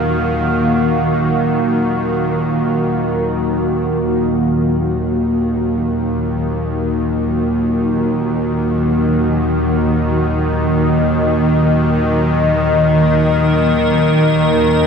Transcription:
Already playing: D#2 D#3 A#3 F#4 F5
4.30 D#2 D#3
7.64 D#5
12.72 A#4

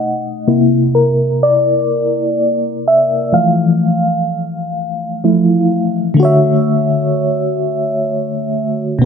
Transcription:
Already playing: D#5 F#5
0.48 C3 A#3 E4
0.95 A#4
1.43 D5
2.88 E5
3.33 E3 F3 A3 F5
5.24 F3 A3 E4
6.14 D3 A3
6.20 F#4 C#5
6.25 E5
8.99 B2 B3

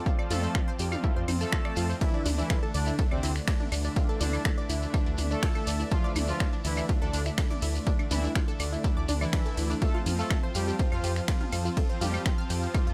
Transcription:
Already playing: F4 D5 A5
0.06 F3 C4 F4 F5, kick, shekere
0.19 D5 D6, claves
0.30 F2 A3 F4 A4 F5 A5, open hi-hat, mid tom, shekere
0.43 C5 C6, shekere
0.54 F4 F5, finger snap, kick, claves, shekere
0.68 C5 C6
0.79 F2 F3 C4 F4 G4 G5, open hi-hat, shekere
0.92 F5 F6, mid tom, claves, shekere
1.04 E4 E5, kick, shekere
1.16 F2 C5 C6
1.28 F2 F3 C4 F4 C5, open hi-hat, mid tom, claves, shekere
1.41 A3 A4 A5, shekere
1.52 F4 F5, finger snap, kick, shekere
1.65 F3 C4 F4 D5 D6, finger snap, claves
1.76 F2 F4 F5, open hi-hat, shekere
1.90 C5 C6, shekere
2.01 D3 E3 A3 D4 E4 D5 E5, kick, ride, shekere
2.14 D4 D5
2.26 D2 D4 D5, open hi-hat, mid tom, shekere
2.38 E3 D4 E4 D5 E5, shekere
2.50 F4 F5, finger snap, kick, ride, claves, shekere
2.63 A4 A5
2.74 D2 D3 A3 D4 D5 D6, open hi-hat, shekere
2.86 E4 E5, shekere
2.99 A4 A5, kick, ride, shekere
3.11 D2 C3 C4 C5 D5 D6, claves
3.23 D2 E4 E5, open hi-hat, shekere
3.36 finger snap, shekere
3.48 D4 D5, finger snap, kick, ride, shekere
3.60 D4 D5, mid tom
3.72 D2 D4 D5, open hi-hat, claves, shekere
3.84 D4 D5, shekere
3.96 D3 A3 D4 F4 F5, kick, ride, shekere
4.09 A4 A5
4.21 D2 D3 D4 D5 D6, open hi-hat, mid tom, shekere
4.33 E4 E5, claves, shekere
4.45 A4 A5, finger snap, kick, ride, shekere
4.58 D5 D6
4.69 D2 D3 A3 D4 E4 E5, open hi-hat, shekere
4.82 shekere
4.94 D4 D5, kick, ride, claves, shekere
5.06 D2 D4 D5
5.18 D2 D4 D5, open hi-hat, mid tom, shekere
5.31 A3 D4 A4 D5 A5, shekere
5.43 F4 F5, finger snap, kick, ride, shekere
5.55 A4 A5, claves
5.67 D2 D5 D6, open hi-hat, shekere
5.80 E4 E5, shekere
5.91 D3 F3 A3 D4 F4 A4 F5 A5, kick, ride, shekere
6.04 D5 D6
6.16 D2 E4 E5, open hi-hat, mid tom, claves, shekere
6.28 F3 F4 F5, shekere
6.40 D4 D5, finger snap, kick, ride, shekere
6.53 D4 D5
6.65 D2 D3 E3 A3 D4 E4 D5 E5, open hi-hat, shekere
6.77 D4 D5, claves, shekere
6.89 F4 F5, kick, ride, shekere
7.02 D2 D3 D4 A4 D5 A5
7.13 D2 D5 D6, open hi-hat, shekere
7.26 E4 E5, finger snap, shekere
7.38 A4 A5, finger snap, kick, ride, claves, shekere
7.50 D5 D6, mid tom
7.62 D2 E4 E5, open hi-hat, shekere
7.75 shekere
7.87 D3 A3 D4 D5, kick, ride, shekere
7.99 D4 D5, claves
8.11 D2 E3 D4 E4 D5 E5, open hi-hat, mid tom, shekere
8.24 D4 D5, shekere
8.35 F4 F5, finger snap, kick, ride, shekere
8.48 A4 A5
8.60 D2 D3 A3 D4 D5 D6, open hi-hat, claves, shekere
8.72 E4 E5, shekere
8.84 A4 A5, kick, ride, shekere
8.97 D2 D5 D6
9.08 D2 D3 A3 D4 D5, open hi-hat, mid tom, shekere
9.21 E3 E4 D5 E5 D6, claves, shekere
9.33 D4 D5, finger snap, kick, ride, shekere
9.46 D3 A3 D4 A4 A5
9.57 D2 E4 E5, open hi-hat, shekere
9.70 D4 D5, shekere
9.81 F3 A3 C4 F4 A4 C5 F5 A5, kick, ride, shekere
9.94 F4 F5
10.06 F2 F4 F5, open hi-hat, mid tom, shekere
10.19 A3 F4 A4 F5 A5, shekere
10.31 A4 A5, finger snap, kick, ride, claves, shekere
10.43 C5 C6
10.55 F2 F3 G3 C4 F4 G4 F5 G5 F6, open hi-hat, shekere
10.68 G4 G5, shekere
10.79 C5 C6, kick, ride, shekere
10.92 F2 F3 F4 F5 F6, claves
11.04 F2 G4 G5, open hi-hat, shekere
11.16 finger snap, shekere
11.28 F4 F5, finger snap, kick, ride, shekere
11.41 F4 F5, mid tom
11.52 F2 F4 F5, open hi-hat, claves, shekere
11.65 F4 F5, shekere
11.76 F3 C4 F4 A4 A5, kick, ride, shekere
11.89 C5 C6
12.01 F2 G3 G4 F5 G5 F6, open hi-hat, mid tom, shekere
12.14 G4 G5, claves, shekere
12.26 C5 C6, finger snap, kick, ride, shekere
12.38 F5 F6
12.50 F2 F3 C4 F4 G4 G5, open hi-hat, shekere
12.62 shekere
12.74 F4 F5, kick, ride, claves, shekere
12.87 F2 F4 F5

